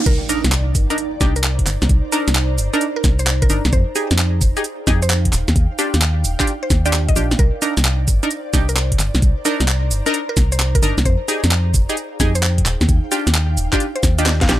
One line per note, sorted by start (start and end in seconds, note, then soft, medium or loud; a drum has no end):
0.00 11.04 D#4 medium
0.00 4.38 D5 medium
0.00 1.56 F5 medium
0.00 0.98 G5 medium
0.06 0.17 C2 loud
0.06 0.29 A#4 loud
0.06 kick loud
0.06 closed hi-hat medium
0.06 crash loud
0.06 impact medium
0.06 shaker soft
0.29 0.42 D4 medium
0.29 0.42 D#4 medium
0.29 0.42 A#4 medium
0.29 open hi-hat loud
0.29 shaker medium
0.44 0.76 C2 loud
0.44 4.38 A#5 medium
0.44 snare medium
0.44 closed hi-hat medium
0.44 shaker soft
0.52 4.38 C5 medium
0.52 clap loud
0.52 shaker soft
0.75 0.86 G1 loud
0.75 kick loud
0.75 open hi-hat loud
0.75 shaker medium
0.90 0.97 D4 medium
0.90 0.97 D#4 medium
0.90 0.97 A#4 loud
0.90 closed hi-hat medium
0.90 shaker soft
0.98 closed hi-hat medium
0.98 shaker soft
1.21 1.63 C2 loud
1.21 1.34 D4 medium
1.21 1.34 D#4 medium
1.21 1.34 G4 loud
1.21 kick loud
1.21 snare medium
1.21 open hi-hat loud
1.21 shaker medium
1.36 1.49 A#4 medium
1.36 closed hi-hat medium
1.36 shaker soft
1.44 clap loud
1.44 shaker soft
1.59 kick medium
1.59 closed hi-hat medium
1.67 1.78 G1 medium
1.67 clap medium
1.67 open hi-hat loud
1.67 shaker medium
1.82 1.87 C2 loud
1.82 snare medium
1.82 shaker soft
1.89 2.00 C2 loud
1.89 kick loud
1.89 closed hi-hat medium
1.89 shaker soft
2.12 2.30 D4 loud
2.12 2.30 D#4 medium
2.12 2.30 A#4 loud
2.12 open hi-hat loud
2.12 shaker medium
2.28 2.60 C2 loud
2.28 snare medium
2.28 closed hi-hat medium
2.28 shaker soft
2.35 clap loud
2.35 shaker soft
2.58 2.69 G1 loud
2.58 open hi-hat medium
2.58 shaker medium
2.73 2.86 D4 medium
2.73 2.86 D#4 medium
2.73 2.86 A#4 loud
2.73 closed hi-hat soft
2.73 shaker soft
2.81 closed hi-hat medium
2.81 shaker soft
2.96 3.09 A#4 medium
3.04 3.46 C2 loud
3.04 kick loud
3.04 snare medium
3.04 open hi-hat loud
3.04 shaker medium
3.19 3.32 C5 medium
3.19 closed hi-hat medium
3.19 shaker soft
3.27 clap loud
3.27 shaker soft
3.42 3.65 A#4 loud
3.42 kick loud
3.42 closed hi-hat medium
3.50 3.61 G1 medium
3.50 3.63 D4 medium
3.50 3.63 D#4 medium
3.50 3.63 A#4 medium
3.50 open hi-hat loud
3.50 shaker medium
3.65 3.70 C2 loud
3.65 snare medium
3.65 shaker soft
3.73 3.84 F2 loud
3.73 3.95 C5 loud
3.73 kick loud
3.73 closed hi-hat medium
3.73 shaker soft
3.87 5.33 G#4 medium
3.95 4.08 D#4 medium
3.95 4.08 G4 medium
3.95 4.08 G#4 medium
3.95 open hi-hat loud
3.95 shaker medium
4.11 4.43 F2 loud
4.11 snare medium
4.11 closed hi-hat medium
4.11 shaker soft
4.18 clap loud
4.18 shaker soft
4.41 4.52 F1 loud
4.41 kick loud
4.41 open hi-hat medium
4.41 shaker medium
4.46 8.89 F5 medium
4.46 8.89 G5 medium
4.57 4.63 D#4 medium
4.57 4.63 G4 medium
4.57 4.63 G#4 medium
4.57 closed hi-hat soft
4.57 shaker soft
4.64 closed hi-hat medium
4.64 shaker soft
4.87 5.29 F2 loud
4.87 5.00 D#4 medium
4.87 5.00 G4 medium
4.87 5.00 G#4 loud
4.87 kick loud
4.87 snare medium
4.87 open hi-hat loud
4.87 shaker medium
5.02 5.15 C5 medium
5.02 closed hi-hat medium
5.02 shaker soft
5.10 clap loud
5.10 shaker soft
5.25 kick medium
5.25 closed hi-hat medium
5.33 5.44 D#1 medium
5.33 clap medium
5.33 open hi-hat loud
5.33 shaker medium
5.48 5.54 D#2 loud
5.48 snare medium
5.48 shaker soft
5.56 5.67 D#2 loud
5.56 kick loud
5.56 closed hi-hat medium
5.56 shaker soft
5.79 5.97 D4 loud
5.79 5.97 F4 medium
5.79 5.97 G4 loud
5.79 open hi-hat loud
5.79 shaker medium
5.87 11.71 D5 medium
5.94 6.26 D#2 loud
5.94 snare medium
5.94 closed hi-hat medium
5.94 shaker soft
6.02 clap loud
6.02 shaker soft
6.24 6.35 D#1 loud
6.24 open hi-hat medium
6.24 shaker medium
6.40 6.53 D4 medium
6.40 6.53 F4 medium
6.40 6.53 G4 loud
6.40 kick medium
6.40 clap medium
6.40 closed hi-hat soft
6.40 shaker soft
6.47 closed hi-hat medium
6.47 shaker soft
6.63 6.75 C5 medium
6.70 7.13 D#2 loud
6.70 kick loud
6.70 snare medium
6.70 open hi-hat loud
6.70 shaker medium
6.86 7.14 D4 medium
6.86 7.14 F4 medium
6.86 7.14 G4 loud
6.86 6.98 D5 medium
6.86 closed hi-hat medium
6.86 shaker soft
6.93 clap loud
6.93 shaker soft
7.09 7.31 D#5 loud
7.09 kick loud
7.09 closed hi-hat medium
7.16 7.35 A#1 loud
7.16 7.34 D4 medium
7.16 7.34 F4 medium
7.16 7.34 G4 loud
7.16 open hi-hat medium
7.16 shaker medium
7.31 snare medium
7.31 shaker soft
7.39 7.50 C2 loud
7.39 7.62 A#4 loud
7.39 kick loud
7.39 closed hi-hat medium
7.39 shaker soft
7.49 11.71 C5 medium
7.62 7.75 D4 medium
7.62 7.75 D#4 medium
7.62 7.75 A#4 medium
7.62 open hi-hat loud
7.62 shaker medium
7.77 8.09 C2 loud
7.77 snare medium
7.77 closed hi-hat medium
7.77 shaker soft
7.85 clap loud
7.85 shaker soft
8.08 8.19 G1 loud
8.08 kick loud
8.08 open hi-hat medium
8.08 shaker medium
8.23 8.29 D4 medium
8.23 8.29 D#4 medium
8.23 8.29 A#4 loud
8.23 closed hi-hat medium
8.23 shaker soft
8.31 closed hi-hat medium
8.31 shaker soft
8.53 8.96 C2 loud
8.53 8.66 D4 medium
8.53 8.66 D#4 medium
8.53 8.66 G4 loud
8.53 kick loud
8.53 snare medium
8.53 open hi-hat loud
8.53 shaker medium
8.69 8.81 A#4 medium
8.69 11.71 A#5 medium
8.69 closed hi-hat medium
8.69 shaker soft
8.76 clap loud
8.76 shaker soft
8.92 kick medium
8.92 closed hi-hat medium
8.99 9.10 G1 medium
8.99 clap medium
8.99 open hi-hat medium
8.99 shaker medium
9.15 9.20 C2 loud
9.15 snare medium
9.15 shaker soft
9.22 9.33 C2 loud
9.22 kick loud
9.22 closed hi-hat medium
9.22 shaker soft
9.45 9.63 D4 loud
9.45 9.63 D#4 medium
9.45 9.63 A#4 loud
9.45 open hi-hat loud
9.45 shaker medium
9.60 9.92 C2 loud
9.60 snare medium
9.60 closed hi-hat medium
9.60 shaker soft
9.68 clap loud
9.68 shaker soft
9.91 10.02 G1 loud
9.91 open hi-hat loud
9.91 shaker medium
10.06 10.19 D4 medium
10.06 10.19 D#4 medium
10.06 10.19 A#4 loud
10.06 closed hi-hat medium
10.06 shaker soft
10.14 closed hi-hat medium
10.14 shaker soft
10.29 10.42 A#4 medium
10.37 10.79 C2 loud
10.37 kick loud
10.37 snare medium
10.37 open hi-hat loud
10.37 shaker medium
10.52 10.65 C5 medium
10.52 closed hi-hat medium
10.52 shaker soft
10.60 clap loud
10.60 shaker soft
10.75 10.98 A#4 loud
10.75 kick loud
10.75 closed hi-hat medium
10.82 10.93 G1 loud
10.82 10.95 D4 medium
10.82 10.95 D#4 medium
10.82 10.95 A#4 medium
10.82 open hi-hat loud
10.82 shaker medium
10.98 11.03 C2 loud
10.98 snare medium
10.98 shaker soft
11.05 11.16 F2 loud
11.05 14.60 D#4 medium
11.05 11.28 C5 loud
11.05 kick loud
11.05 closed hi-hat medium
11.05 shaker soft
11.28 11.41 D#4 medium
11.28 11.41 G4 medium
11.28 11.41 G#4 medium
11.28 open hi-hat loud
11.28 shaker medium
11.44 11.76 F2 loud
11.44 12.66 G#4 medium
11.44 snare medium
11.44 closed hi-hat medium
11.44 shaker soft
11.51 clap loud
11.51 shaker soft
11.55 14.60 F5 medium
11.74 11.85 F1 loud
11.74 kick loud
11.74 open hi-hat loud
11.74 shaker medium
11.79 14.60 G5 medium
11.89 11.96 D#4 medium
11.89 11.96 G4 medium
11.89 11.96 G#4 medium
11.89 closed hi-hat medium
11.89 shaker soft
11.97 closed hi-hat medium
11.97 shaker soft
12.20 12.62 F2 loud
12.20 12.33 D#4 medium
12.20 12.33 G4 medium
12.20 12.33 G#4 loud
12.20 kick loud
12.20 snare medium
12.20 open hi-hat loud
12.20 shaker medium
12.35 12.48 C5 medium
12.35 closed hi-hat medium
12.35 shaker soft
12.43 clap loud
12.43 shaker soft
12.58 kick medium
12.58 closed hi-hat medium
12.66 12.77 D#1 loud
12.66 clap medium
12.66 open hi-hat loud
12.66 shaker medium
12.81 12.86 D#2 loud
12.81 snare medium
12.81 shaker soft
12.89 13.00 D#2 loud
12.89 kick loud
12.89 closed hi-hat medium
12.89 shaker soft
13.12 13.30 D4 medium
13.12 13.30 F4 medium
13.12 13.30 G4 loud
13.12 14.60 D5 medium
13.12 open hi-hat loud
13.12 shaker medium
13.27 13.59 D#2 loud
13.27 snare medium
13.27 closed hi-hat medium
13.27 shaker soft
13.35 clap loud
13.35 shaker soft
13.57 13.68 D#1 loud
13.57 open hi-hat loud
13.57 shaker medium
13.73 13.86 D4 medium
13.73 13.86 F4 medium
13.73 13.86 G4 loud
13.73 kick medium
13.73 clap medium
13.73 closed hi-hat medium
13.73 shaker soft
13.80 closed hi-hat medium
13.80 shaker soft
13.96 14.08 C5 medium
13.96 closed hi-hat soft
14.03 14.46 D#2 loud
14.03 kick loud
14.03 snare medium
14.03 open hi-hat loud
14.03 shaker medium
14.18 14.47 D4 medium
14.18 14.47 F4 medium
14.18 14.47 G4 medium
14.18 14.31 D#5 medium
14.18 closed hi-hat medium
14.18 shaker soft
14.26 snare medium
14.26 clap loud
14.26 shaker soft
14.41 14.60 F5 loud
14.41 kick loud
14.41 snare medium
14.41 closed hi-hat medium
14.49 14.60 A#1 loud
14.49 14.60 D4 medium
14.49 14.60 F4 medium
14.49 14.60 G4 loud
14.49 snare medium
14.49 open hi-hat loud
14.49 shaker medium